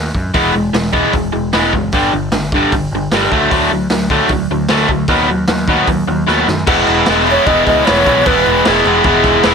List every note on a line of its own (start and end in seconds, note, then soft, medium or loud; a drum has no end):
0.00 0.10 D#2 medium
0.15 0.31 F#2 medium
0.15 kick medium
0.34 0.50 E1 medium
0.34 0.53 E3 medium
0.34 0.53 G#3 medium
0.34 0.54 B3 medium
0.34 kick loud
0.34 open hi-hat medium
0.53 0.69 E1 medium
0.53 0.72 E3 medium
0.53 0.72 G#3 medium
0.73 1.04 E1 medium
0.73 0.91 E3 medium
0.73 0.92 G#3 medium
0.73 snare loud
0.73 open hi-hat medium
0.93 1.12 E3 medium
0.93 1.12 G#3 medium
0.93 1.13 B3 medium
0.93 kick medium
1.13 1.29 E1 medium
1.13 1.31 E3 medium
1.13 1.32 G#3 medium
1.13 kick loud
1.13 open hi-hat soft
1.33 1.50 E1 medium
1.33 1.51 E3 medium
1.33 1.51 G#3 medium
1.53 1.69 E1 medium
1.53 1.72 E3 medium
1.53 1.72 G#3 medium
1.53 1.72 B3 medium
1.53 snare loud
1.53 open hi-hat medium
1.73 1.93 F#1 medium
1.73 1.92 E3 medium
1.73 1.92 G#3 medium
1.73 kick medium
1.92 2.08 G1 medium
1.92 2.12 G2 medium
1.92 2.12 D3 medium
1.92 2.12 G3 loud
1.92 kick loud
1.92 open hi-hat medium
2.13 2.29 G1 medium
2.13 2.31 G2 medium
2.13 2.31 D3 medium
2.31 2.63 G1 medium
2.31 2.51 G2 medium
2.31 2.51 D3 medium
2.31 snare loud
2.31 open hi-hat medium
2.52 2.72 G2 medium
2.52 2.72 D3 medium
2.52 2.73 G3 loud
2.52 kick medium
2.72 2.87 G1 medium
2.72 2.91 G2 medium
2.72 2.91 D3 medium
2.72 kick loud
2.72 open hi-hat medium
2.91 3.07 G1 medium
2.91 3.11 G2 medium
2.91 3.11 D3 medium
3.11 3.26 G1 medium
3.11 3.31 G2 medium
3.11 3.30 D3 medium
3.11 3.31 G3 medium
3.11 snare loud
3.11 open hi-hat medium
3.31 3.47 D2 medium
3.31 3.50 D3 medium
3.31 3.50 F#3 loud
3.31 3.51 A3 loud
3.31 kick medium
3.51 3.67 D2 medium
3.51 3.70 D3 medium
3.51 3.70 F#3 loud
3.51 3.70 A3 loud
3.51 kick loud
3.51 open hi-hat medium
3.71 3.86 D2 medium
3.71 3.89 D3 medium
3.71 3.89 F#3 medium
3.90 4.21 D2 medium
3.90 4.08 D3 medium
3.90 4.09 F#3 loud
3.90 snare loud
3.90 open hi-hat medium
4.10 4.29 D3 medium
4.10 4.29 F#3 medium
4.10 4.29 A3 medium
4.10 kick medium
4.28 4.45 D2 medium
4.28 4.48 D3 medium
4.28 4.49 F#3 medium
4.28 kick loud
4.28 open hi-hat medium
4.51 4.66 D2 medium
4.51 4.68 D3 medium
4.51 4.69 F#3 medium
4.68 4.85 D2 medium
4.68 4.88 D3 medium
4.68 4.89 F#3 loud
4.68 4.89 A3 loud
4.68 snare loud
4.68 open hi-hat soft
4.89 5.04 D2 medium
4.89 5.08 D3 medium
4.89 5.08 F#3 medium
4.89 kick medium
5.07 5.24 D#2 medium
5.07 5.28 D#3 loud
5.07 5.28 F#3 medium
5.07 5.28 B3 loud
5.07 kick loud
5.07 open hi-hat medium
5.28 5.44 D#2 medium
5.28 5.47 D#3 medium
5.28 5.47 F#3 medium
5.47 5.79 D#2 medium
5.47 5.66 D#3 medium
5.47 5.67 F#3 medium
5.47 snare loud
5.47 open hi-hat medium
5.68 5.87 D#3 medium
5.68 5.87 F#3 medium
5.68 5.88 B3 loud
5.68 kick medium
5.87 6.03 D#2 medium
5.87 6.06 D#3 medium
5.87 6.06 F#3 medium
5.87 kick loud
5.87 open hi-hat medium
6.07 6.23 D#2 medium
6.07 6.25 D#3 medium
6.07 6.26 F#3 medium
6.27 6.43 D#2 loud
6.27 6.46 D#3 medium
6.27 6.46 F#3 loud
6.27 6.46 B3 loud
6.27 snare medium
6.48 6.63 F#2 medium
6.48 6.66 D#3 medium
6.48 6.66 F#3 medium
6.48 snare medium
6.67 6.82 E1 medium
6.67 7.08 E3 medium
6.67 7.09 G#3 loud
6.67 7.09 B3 loud
6.67 7.10 E4 loud
6.67 kick loud
6.67 crash loud
6.67 crash medium
6.87 7.02 E1 medium
6.87 crash medium
7.06 7.37 E1 medium
7.06 7.27 E3 medium
7.06 7.28 G#3 loud
7.06 7.29 B3 loud
7.06 snare loud
7.06 crash medium
7.10 7.29 E4 loud
7.27 7.46 E3 medium
7.27 7.47 G#3 medium
7.27 7.46 B3 medium
7.27 7.47 E4 medium
7.27 crash medium
7.31 7.48 C#5 loud
7.46 7.61 E1 loud
7.46 7.85 E3 medium
7.46 7.85 G#3 loud
7.46 7.86 B3 loud
7.46 7.86 E4 loud
7.46 7.66 D#5 loud
7.46 kick loud
7.46 crash medium
7.67 7.82 C#2 medium
7.67 7.86 D#5 loud
7.67 kick medium
7.67 crash medium
7.85 8.05 E3 medium
7.85 8.06 G#3 medium
7.85 8.06 B3 medium
7.85 8.07 E4 medium
7.85 8.28 C#5 loud
7.85 snare loud
7.85 crash medium
7.89 8.02 E1 loud
8.06 8.21 B1 medium
8.06 8.25 E3 medium
8.06 8.26 G#3 medium
8.06 8.26 B3 loud
8.06 8.27 E4 loud
8.06 kick medium
8.06 crash medium
8.26 8.41 E1 loud
8.26 8.64 E3 medium
8.26 8.65 G#3 loud
8.26 8.66 B3 loud
8.26 8.66 E4 loud
8.26 8.69 B4 loud
8.26 kick loud
8.26 crash medium
8.46 8.61 E1 medium
8.46 crash medium
8.65 8.81 E1 medium
8.65 8.85 E3 loud
8.65 8.85 G#3 medium
8.65 8.86 B3 loud
8.65 8.86 E4 loud
8.65 9.06 G#4 medium
8.65 snare loud
8.65 crash medium
8.85 9.00 E1 loud
8.85 9.03 E3 medium
8.85 9.04 G#3 medium
8.85 9.04 B3 medium
8.85 9.05 E4 medium
8.85 crash medium
9.04 9.19 E1 loud
9.04 9.43 E3 loud
9.04 9.44 G#3 medium
9.04 9.44 B3 loud
9.04 9.45 E4 loud
9.04 9.54 G#4 medium
9.04 kick loud
9.04 crash medium
9.24 9.38 E1 medium
9.24 kick medium
9.24 crash medium
9.43 9.54 E1 medium
9.43 9.54 E3 medium
9.43 9.54 G#3 medium
9.43 9.54 B3 medium
9.43 9.54 E4 loud
9.43 snare loud
9.43 crash medium